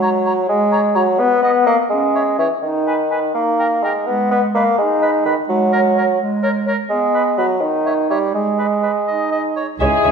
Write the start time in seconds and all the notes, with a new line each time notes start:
Already playing: F#3 G#3
0.02 C#5 A#5
0.24 C#5 A#5
0.48 G#3
0.72 C#5 A#5
0.95 F#3 C#5 A#5
1.19 B3
1.42 B3 D#5 F#5
1.65 A#3 D#5 F#5
1.90 G#3 C#4
2.14 C#5 E5
2.38 E3 C#5 E5
2.62 D#3 D#4
2.87 B4 G#5
3.11 B4 G#5
3.34 A#3 D#4
3.59 A#4 G5
3.83 G#3 A#4 G5
4.07 G#3 B3
4.31 B3 B4 D#5
4.55 A#3 B4 D#5
4.78 G#3 D#4
5.01 B4 D#5
5.25 D#3 B4 D#5
5.49 F#3 G#3
5.72 A#4 C#5
5.96 A#4 C#5
6.19 G#3
6.43 A#4 C#5
6.66 A#4 C#5
6.89 G#3 B3
7.13 B4 D#5
7.38 F#3 B4 D#5
7.61 D#3 D#4
7.85 C#5 E5
8.09 G3 C#5 E5
8.33 G#3
8.58 B4 D#5
8.82 B4 D#5
9.06 D#4 D#5
9.31 D#5
9.56 C#5 D#5
9.80 C#2 C#3 G#3 E4 G#4 C#5 E5 G#5
10.04 C#2 C#3 G#4 C#5 E5